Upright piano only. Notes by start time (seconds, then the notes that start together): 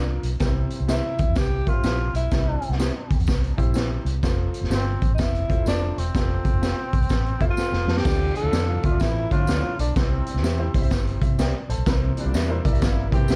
Already playing: D4 F4 A#4
0.40 C3 E4 G4 A#4
0.47 C5
1.67 G4 A#4 E5
1.74 C5
2.32 C3 E4 G4 C5
3.58 E4 G4 C5
4.23 F4 A4 C5
5.50 F4 A4 C5
6.15 F4 G4 C5
6.21 A4
7.41 F4 A4 C5 F5
7.58 G5
7.89 A5
8.05 D3 F4 A4 D5
8.68 F4 A4 F5
8.84 F4 A4 E5
9.96 C3 E4 G4 B4
10.02 C5
10.59 E4 G4 C5
10.75 E4 G4 C5
11.22 E5
11.39 A#4 D5 G5
11.70 A4 C5 A5
11.86 C3 E4 A#4 B4
11.92 C5
12.49 E4 A#4 C5
12.64 E4 A#4 D5